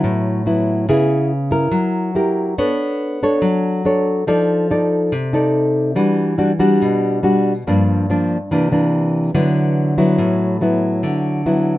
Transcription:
Already playing: F#3 B3 E4
0.04 A2
0.46 F#3 B3 E4
0.89 C#3 B3 E4 G#4
1.51 E4 A#4
1.72 F#3
2.15 E4 G4 A#4
2.58 B3 D4 A4 C#5
3.23 D4 A4 C#5
3.42 F#3
3.85 D4 A4 C#5
4.27 F3 D#4 A4 D5
4.71 D#4 A4 D5
5.12 C3
5.33 D#4 A4 D5
5.95 E3 G3 D4 F#4
6.38 G3 D4 F#4
6.59 G3 D4 F#4
6.82 B2
7.23 G3 D4 F#4
7.67 G2 F3 A#3 D4
8.10 F3 A#3 D4
8.51 C3 E3 A#3 D4
8.72 E3 A#3 D4
9.35 D3 F#3 B3 E4
9.98 F#3 B3 E4
10.18 A2
10.61 F#3 B3 E4
11.03 D3
11.46 F#3 B3 E4

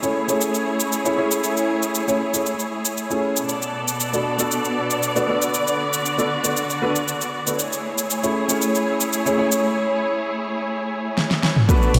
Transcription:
Already playing: A3 E4 G#4 C#5
0.02 A3 C#4 E4 G#4 C#5, shaker
0.27 A3 C#4 E4 G#4 C#5, shaker
0.41 shaker
0.54 shaker
0.80 shaker
0.92 shaker
1.05 A3 C#4 E4 G#4 C#5, shaker
1.17 A3 C#4 E4 G#4 C#5
1.31 shaker
1.44 shaker
1.57 shaker
1.83 shaker
1.95 shaker
2.07 A3 C#4 E4 G#4 C#5, shaker
2.33 A3 C#4 E4 G#4 C#5, shaker
2.46 shaker
2.59 shaker
2.85 shaker
2.97 shaker
3.10 A3 C#4 E4 G#4 C#5, shaker
3.37 shaker
3.48 B2 B3 A4 D5, shaker
3.62 shaker
3.88 shaker
4.00 shaker
4.13 B3 D4 F#4 A4 D5, shaker
4.38 B3 D4 F#4 A4 D5, shaker
4.51 shaker
4.65 shaker
4.90 shaker
5.03 shaker
5.15 B3 D4 F#4 A4 D5, shaker
5.27 D3 B3 D4 F#4 A4 D5
5.42 shaker
5.54 shaker
5.68 shaker
5.93 shaker
6.06 shaker
6.18 B3 D4 F#4 A4 D5, shaker
6.43 B3 D4 F#4 A4 D5, shaker
6.57 shaker
6.70 shaker
6.81 B3 D4 F#4 A4 B4
6.96 shaker
7.08 shaker
7.21 shaker
7.46 B3 D4 F#4 A4 D5, shaker
7.59 A3 E4 G#4 C#5, shaker
7.73 shaker
7.98 shaker
8.10 shaker
8.23 A3 C#4 E4 G#4 C#5, shaker
8.48 A3 C#4 E4 G#4 C#5, shaker
8.62 shaker
8.75 shaker
9.01 shaker
9.13 shaker
9.25 A3 C#4 E4 G#4 C#5, shaker
9.37 A3 C#4 E4 G#4 C#5
9.52 shaker
11.18 snare
11.31 snare
11.43 snare
11.56 mid tom
11.68 A3 B3 D4 F#4 A4 B4 D5, kick, shaker
11.83 shaker
11.94 B1, open hi-hat

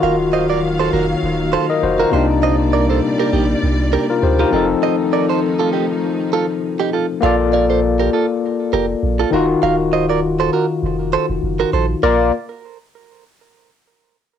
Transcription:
Already playing: D#3 F#3 A#3 D#4 F4 F#4 F5
0.03 D#1 A#4 F5
0.33 C5 D#5
0.50 A#4 D5
0.80 A4 C5
0.93 F1 F#4 A#4
1.23 D#1
1.53 A4 C5
1.70 A#4 D#5
1.83 F1 F#4 C5
1.99 F4 F#4 A#4
2.11 C2 A#2 C3 G3 A#3 D4 G4 C5 D5
2.16 D#4
2.43 C5 D#5
2.73 A#4 D5
2.89 A4 C5
3.19 G4 A#4
3.33 A#1 D#4 G4
3.63 C2
3.93 G4 A#4
4.10 F4 A#4
4.23 D2 G4 C5
4.39 D#4 F4 G4 A#4
4.51 F1 D#3 F3 A3 C4 D#4 F4 A4
4.56 A4
4.83 C5 D#5
5.13 A#4 D5
5.29 A4 C5
5.60 F4 A4
5.73 D#4 G4
6.33 F4 A4
6.80 D#4 G4
6.93 F4 A4
7.21 A#1 A#3 F4 A4 D5 F5
7.26 D5
7.53 A#4 D5
7.70 A4 C5
8.00 G4 A#4
8.13 F4 A4
8.73 F1 G4 A#4
9.03 A#1
9.20 F4 A4
9.31 D#1 D#3 D#4 F4 F#4 A#4
9.36 F#4
9.63 D#1 A#4 F5
9.93 C5 D#5
10.10 A#4 D5
10.40 A4 C5
10.53 F#4 A#4
10.83 F1
11.13 A4 C5
11.29 F1
11.43 F#1
11.60 F#4 A#4
11.73 A#1 A4 C5
12.03 A#1 A#3 F4 A#4 D5

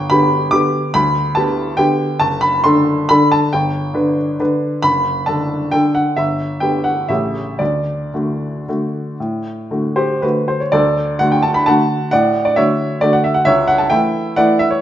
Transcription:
Already playing: G1 G5
0.10 D3 B3 G4 B5
0.51 D3 B3 G4 D6
0.94 D2 B5
1.35 D3 B3 G4 A5
1.77 D3 B3 G4 G5
2.20 F#1 A5
2.41 B5
2.64 D3 D4 A4 C6
3.09 D3 D4 A4 B5
3.32 A5
3.53 G1 G5
3.94 D3 D4 B4
4.40 D3 D4 B4
4.83 F#1 B5
5.26 D3 D4 A4 A5
5.71 D3 D4 A4 G5
5.95 F#5
6.17 G1 E5
6.60 D3 B3 G4 G5
6.84 F#5
7.09 A1 C#3 A3 G4 E5
7.59 D2 D5
8.14 D3 A3 F#4
8.69 D3 A3 F#4
9.20 A2
9.71 D3 A3 F#4
9.96 G4 C5
10.22 D3 A3 F#4 B4
10.48 C5
10.60 C#5
10.72 D2 A4 D5
11.19 D3 A3 F#4 F#5
11.31 G5
11.43 A5
11.54 B5
11.66 D3 A3 F#4 F#5 A5
12.11 A2 D5 F#5
12.45 D5
12.56 D3 A3 F#4 C#5 E5
13.01 D3 A3 F#4 D5
13.13 F#5
13.24 E5
13.34 F#5
13.45 C#2 C#5 E5
13.68 F#5
13.78 A5
13.90 E3 A3 E4 E5 G5
14.36 E3 A3 E4 D5 F#5
14.59 E5
14.71 C#5

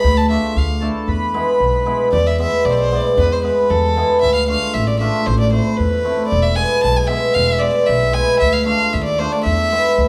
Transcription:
Already playing: B5
0.04 D2
0.17 A5
0.30 A3 D4 F4 E5
0.56 D2 F5
0.81 A3 D4 E4 A4
1.08 E2 B4
1.34 G#3 B3 E4
1.60 B1
1.86 G#3 B3 E4
2.12 E2 D5
2.27 E5
2.39 G#3 B3 E4 E5
2.65 B1 D5
2.70 C5 D5
2.79 C5
2.91 G#3 B3 E4 D5
3.17 E2 B4
3.32 C5
3.43 G#3 B3 E4 B4
3.70 E2 A4
3.96 G#3 B3 E4
4.21 D2 E5
4.35 F5
4.48 A3 D4 F4 F5
4.73 A1 E5
4.87 D5
4.99 A3 D4 F4 E5
5.26 A1 C5
5.39 D5
5.52 A3 C4 E4 C5
5.77 E2 B4
6.04 A3 C4 E4
6.27 D5
6.32 E1
6.42 E5
6.55 G#3 B3 E4 G#5
6.83 B1 A5
6.96 G#5
7.07 G#3 B3 E4 E5
7.34 E1 F5
7.47 E5
7.58 G#3 B3 E4 D5
7.86 B1 E5
8.12 G#3 B3 E4 G#5
8.40 D2 E5
8.53 F5
8.65 A3 D4 F4 F5
8.93 D#2 E5
9.04 D5
9.19 A3 D4 F4 C5
9.32 D5
9.44 E2 E5
9.72 G#3 B3 E4
9.98 D2

